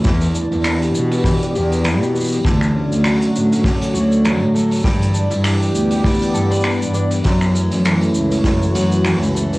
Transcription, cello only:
X:1
M:4/4
L:1/16
Q:"Swing 16ths" 1/4=100
K:D
V:1 name="Cello" clef=bass
E,,2 z E,,2 z B,,2 z2 E,,3 B,,2 z | D,,2 z D,,2 z A,,2 z2 D,,3 A,,2 z | G,,2 z G,,2 z D,,2 z2 G,, z2 G,,2 z | F,,2 z F,,2 z C,,2 z2 F,,3 C,,2 z |]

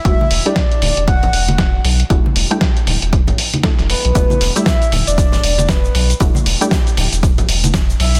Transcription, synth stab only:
X:1
M:4/4
L:1/16
Q:"Swing 16ths" 1/4=117
K:Em
V:1 name="Synth stab"
[G,A,DEF]3 [G,A,DEG]12- [G,A,DEG] | [G,A,DEF]3 [G,A,DEG]8- [G,A,DEG] [G,A,DEA]4 | [G,A,DEF]3 [G,A,DEG]12- [G,A,DEG] | [G,A,DEF]3 [G,A,DEG]12- [G,A,DEG] |]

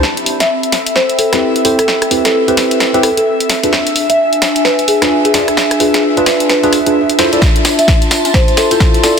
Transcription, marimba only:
X:1
M:4/4
L:1/16
Q:"Swing 16ths" 1/4=130
K:Am
V:1 name="Marimba"
z3 e3 z2 c2 A2 z2 A A | z3 A A z4 z A A z4 | z3 e3 z2 B2 ^G2 z G2 z | z2 ^G G z B B z B3 z4 z |
z3 e3 z2 c2 A2 z2 A z |]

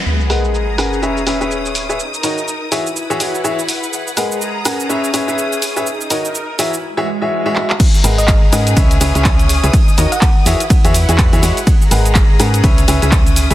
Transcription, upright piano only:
X:1
M:4/4
L:1/16
Q:"Swing 16ths" 1/4=124
K:G#m
V:1 name="Upright piano"
z2 [G,GABf]4 [CGABf]2 [CGBce] z [CGBce] [CGBce]4 [GBce] | z2 [D,FAcd] z3 [E,FGce] z2 [E,FGce] [E,FGcf] z [E,FGce] z3 | z2 [G,GABf]4 [CGABf]2 [CGBce] z [CGBce] [CGBce]4 [GBce] | z2 [D,FAcd] z3 [E,FGce] z2 [E,FGce] z [E,FGce]2 [E,FGce] [G,FGce] z |
z2 [G,GABf]4 [CGABf]2 [CGBce] z [CGBce] [CGBce]4 [GBce] | z2 [D,FAcd] z3 [E,FGce] z2 [E,FGce] z [E,FGce]2 [E,FGce] [G,FGce] z | z2 [G,GABf]4 [CGABf]2 [CGBce] z [CGBce] [CGBce]4 [GBce] |]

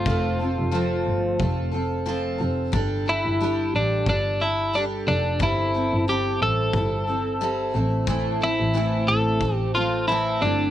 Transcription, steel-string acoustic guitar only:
X:1
M:4/4
L:1/8
Q:"Swing 16ths" 1/4=90
K:C
V:1 name="Steel-string acoustic guitar"
[F,A,CFA] [CFA] [F,A,CFA]2 [A,CFA] [CFA] [F,A,CFA] [CFA] | [G,DGA] [DGA] [G,DGA]2 [G,DGA] [DGA] [G,DGA] [DGA] | [G,CEA] [CEA] [G,CEA]2 [G,CEA] [CEA] [G,CEA] [A,CEA] | [A,,E,A,CEA] [A,CEA] [A,,E,A,CEA]2 [A,CEA] [A,CA] [A,,E,A,CEA] [A,CEA] |]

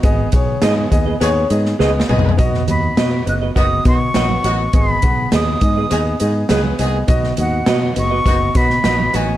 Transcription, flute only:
X:1
M:4/4
L:1/8
Q:1/4=102
K:B
V:1 name="Flute"
z8 | z b2 f' d' c'3 | b2 d'4 z2 | z f2 c'2 b2 g |]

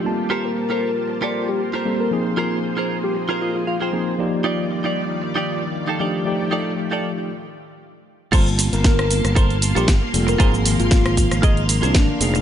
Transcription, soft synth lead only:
X:1
M:4/4
L:1/16
Q:"Swing 16ths" 1/4=116
K:Gm
V:1 name="Soft synth lead"
z3 B6 z2 G z3 B | z6 z G z2 F F F F z2 | z16 | z16 |
z3 B6 z2 G z3 B | B z2 F4 z4 D4- D |]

